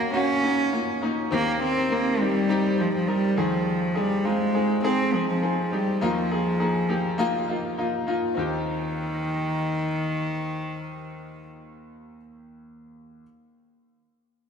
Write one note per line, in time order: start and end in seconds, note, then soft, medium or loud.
0.00 1.27 D#2 medium
0.00 1.27 D#3 medium
0.00 0.13 A#3 medium
0.00 0.13 C#4 medium
0.00 0.14 F#4 loud
0.13 0.35 A#3 medium
0.13 0.35 C#4 medium
0.13 0.98 C#4 loud
0.13 0.35 F#4 loud
0.42 0.64 A#3 medium
0.42 0.65 C#4 medium
0.42 0.65 D#4 medium
0.72 0.94 A#3 medium
0.72 0.94 C#4 medium
0.72 0.94 F4 medium
1.01 1.23 A#3 medium
1.01 1.24 C#4 medium
1.01 1.24 D#4 medium
1.31 3.33 D#2 medium
1.31 3.33 D#3 medium
1.31 1.60 A#3 loud
1.31 1.53 C4 medium
1.31 1.53 D#4 medium
1.31 1.53 G4 loud
1.61 1.82 C4 medium
1.61 1.94 C4 loud
1.61 1.83 D#4 medium
1.61 1.83 A#4 medium
1.90 2.22 A#3 loud
1.90 2.11 C4 medium
1.90 2.12 D#4 medium
1.90 2.12 A#4 medium
2.19 2.81 G3 loud
2.19 2.41 C4 medium
2.19 2.41 D#4 medium
2.19 2.42 G4 medium
2.49 2.70 C4 medium
2.49 2.71 D#4 medium
2.49 2.71 G4 loud
2.78 2.94 F3 medium
2.78 3.00 C4 medium
2.78 3.00 D#4 medium
2.78 3.00 G4 medium
2.95 3.09 F3 medium
3.07 3.40 G3 medium
3.07 3.29 C4 medium
3.07 3.29 D#4 medium
3.07 3.30 A#4 medium
3.36 5.68 D#2 medium
3.36 5.68 D#3 medium
3.36 3.99 F3 medium
3.36 3.84 C4 medium
3.36 3.84 D#4 medium
3.36 3.84 G#4 medium
3.94 4.27 G3 loud
3.94 4.17 C4 medium
3.94 4.17 D#4 medium
3.94 4.17 G#4 medium
4.24 4.84 G#3 loud
4.24 4.46 C4 medium
4.24 4.46 D#4 medium
4.24 4.47 F4 medium
4.53 4.76 C4 medium
4.53 4.76 D#4 medium
4.53 4.76 G#4 medium
4.83 5.05 C4 medium
4.83 5.16 C4 loud
4.83 5.05 D#4 medium
4.83 5.06 G#4 loud
5.12 5.28 F3 medium
5.12 5.34 C4 medium
5.12 5.35 D#4 medium
5.12 5.35 G#4 medium
5.29 5.75 F3 medium
5.42 5.64 C4 medium
5.42 5.64 D#4 medium
5.42 5.64 G#4 medium
5.71 6.04 G3 medium
5.71 5.93 C4 medium
5.71 5.94 D#4 medium
5.71 5.94 G4 medium
6.01 8.33 D#2 medium
6.01 8.33 D#3 medium
6.01 7.78 F3 medium
6.01 6.23 A#3 loud
6.01 6.23 D#4 medium
6.01 6.23 F4 loud
6.31 6.52 A#3 medium
6.31 6.53 D#4 medium
6.31 6.53 G#4 medium
6.59 6.81 A#3 medium
6.59 6.82 D#4 medium
6.59 6.82 G#4 medium
6.89 7.11 A#3 medium
6.89 7.11 D#4 medium
6.89 7.11 G4 medium
7.18 7.40 A#3 loud
7.18 7.40 D#4 loud
7.18 7.41 F4 loud
7.48 7.70 A#3 medium
7.48 7.70 D#4 medium
7.48 7.71 F4 medium
7.77 7.99 A#3 medium
7.77 8.00 D#4 medium
7.77 8.00 F4 medium
8.07 8.29 A#3 medium
8.07 8.29 D#4 medium
8.07 8.29 F4 medium
8.35 12.18 D#2 medium
8.35 11.48 D#3 medium
8.35 12.17 C4 medium
8.35 12.18 D#4 medium
8.39 12.19 G4 medium